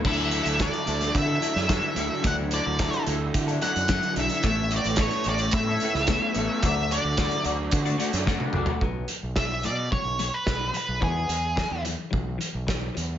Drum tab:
CC |x---------------|----------------|----------------|----------------|
HH |--xxxxxxx-x-x-x-|x-x-xxx-xxxxxxxx|x-xxxxxxx-x-x-x-|x-x-xxx-xxxx----|
SD |----o--o---oo---|----o-------o---|----o------oo---|----o------oo---|
T1 |----------------|----------------|----------------|-------------o--|
T2 |----------------|----------------|----------------|--------------o-|
FT |----------------|----------------|----------------|---------------o|
BD |o---o---o---o---|o---o---o---o---|o---o---o---o---|o---o---o---o---|

CC |----------------|----------------|
HH |--x---x---x---x-|--x---x---x---x-|
SD |----o-------o---|----o-------o---|
T1 |----------------|----------------|
T2 |----------------|----------------|
FT |----------------|----------------|
BD |o---o---o---o---|o---o---o---o---|